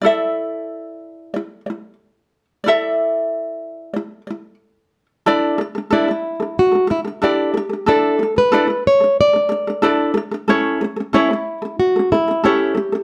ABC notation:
X:1
M:4/4
L:1/16
Q:1/4=92
K:Amix
V:1 name="Ukulele"
[EAde]8 [Ed]2 [Ed]2 z4 | [EAde]8 [Ed]2 [Ed]2 z4 | [DEAd]2 [DA] [DA] [DEAd] [DA]2 [DA]2 [DA] [DA] [DA] [DEAd]2 [DA] [DA] | [DEAd]2 [DA] [DA] [DEAd] A2 [DA]2 [DA] [DA] [DA] [DEAd]2 [DA] [DA] |
[CEAc]2 [CA] [CA] [CEAc] [CA]2 [CA]2 [CA] [CA] [CA] [CEAc]2 [CA] [CA] |]
V:2 name="Nylon-string guitar"
z16 | z16 | z4 E4 F2 E2 G4 | A3 B3 c2 d6 z2 |
z4 E4 F2 E2 G4 |]